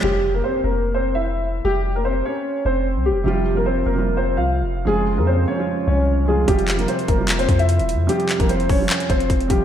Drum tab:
HH |----------------|----------------|----------------|----------------|
CP |----------------|----------------|----------------|----------------|
BD |----------------|----------------|----------------|----------------|

HH |xxxxxxx-xxxxxxx-|xxxxxxo-xxxxxxx-|
CP |--x-----x-------|--x-----x-------|
BD |o-----o---o-----|---o--o---o-o-o-|